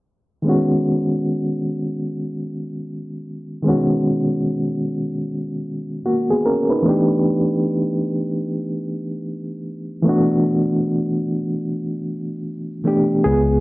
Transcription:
0.42 reed electric piano D#3 G#3 B3
0.47 reed electric piano C#4 F#4
3.62 reed electric piano D#3 G#3 B3
3.67 reed electric piano C#4 F#4
6.06 reed electric piano A#3 F#4
6.30 reed electric piano B3 G#4
6.46 reed electric piano C#4 A#4
6.70 reed electric piano D#4 B4
6.82 reed electric piano E3 A3 B3
6.87 reed electric piano D4 G4
10.02 reed electric piano E3 A3 B3
10.08 reed electric piano D4 F#4
12.84 reed electric piano E3 A3 B3 D4 G4
13.24 tine electric piano C#2, reed electric piano B3 G#4

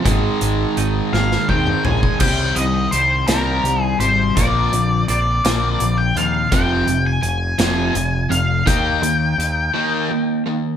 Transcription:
Already playing: clean electric guitar C4
0.05 picked electric bass G#1, distorted electric guitar G#2 D#3 G#3, clean electric guitar G#3, kick, closed hi-hat
0.41 picked electric bass G#1, clean electric guitar G#3, closed hi-hat
0.77 picked electric bass G#1, clean electric guitar D#4, closed hi-hat
1.13 picked electric bass G#1, clean electric guitar G#3, lead electric guitar F5, snare
1.32 snare
1.49 picked electric bass D#2, overdriven electric guitar G#2 D#3 G#3, clean electric guitar C4, lead electric guitar G5, kick
1.67 mid tom
1.85 picked electric bass A#1, clean electric guitar G#3, lead electric guitar G#5, floor tom
2.03 kick
2.20 picked electric bass C2, clean electric guitar C3 D#3 G3 C4 G4, distorted electric guitar C3 G3 C4, lead electric guitar G5, kick, crash
2.56 picked electric bass C2, distorted electric guitar C3 G3, lead electric guitar D#5, closed hi-hat
2.91 picked electric bass C2, clean electric guitar D#3 G3 C4 G4, lead electric guitar C5, closed hi-hat
3.27 picked electric bass C2, clean electric guitar C3 D#3 G3 C4 G4, distorted electric guitar C3 G3 C4, lead electric guitar A#4, snare, closed hi-hat
3.64 picked electric bass C2, distorted electric guitar C3 G3, closed hi-hat
3.83 lead electric guitar G#4
3.99 picked electric bass G#1, distorted electric guitar C3 G3, clean electric guitar G3 C4 G4, lead electric guitar C5, closed hi-hat
4.35 picked electric bass A#1, clean electric guitar A#2 D3 A#3 C4 F4, distorted electric guitar A#2 F3 A#3, lead electric guitar D5, kick, closed hi-hat
4.73 picked electric bass A#1, distorted electric guitar A#2 F3, closed hi-hat
5.08 picked electric bass A#1, clean electric guitar D3 A#3 C4 F4, lead electric guitar D5, closed hi-hat
5.44 picked electric bass A#1, distorted electric guitar A#2 F3 A#3, clean electric guitar A#2 D3 A#3 C4 F4, snare, closed hi-hat
5.80 picked electric bass A#1, distorted electric guitar A#2 F3, closed hi-hat
5.98 lead electric guitar G5
6.16 picked electric bass D#2, distorted electric guitar A#2 F3, clean electric guitar A#3 C4 F4, lead electric guitar F5, closed hi-hat
6.51 picked electric bass F1, distorted electric guitar F2 C3 F3, lead electric guitar G5, kick, closed hi-hat
6.86 picked electric bass F1, distorted electric guitar F2 C3, closed hi-hat
7.07 lead electric guitar G#5
7.22 picked electric bass F1, lead electric guitar G#5, closed hi-hat
7.58 picked electric bass F1, distorted electric guitar F2 C3 F3, snare, closed hi-hat
7.93 picked electric bass F1, distorted electric guitar F2 C3, closed hi-hat
8.30 picked electric bass F1, distorted electric guitar F2 C3, lead electric guitar F5, closed hi-hat
8.65 picked electric bass D#2, distorted electric guitar D#3 A#3 D#4, lead electric guitar G5, kick, closed hi-hat
9.02 picked electric bass D#2, distorted electric guitar D#3 A#3, closed hi-hat
9.38 picked electric bass D#2, closed hi-hat
9.74 distorted electric guitar D#3 A#3 D#4
10.10 distorted electric guitar D#3 A#3
10.46 distorted electric guitar D#3 A#3

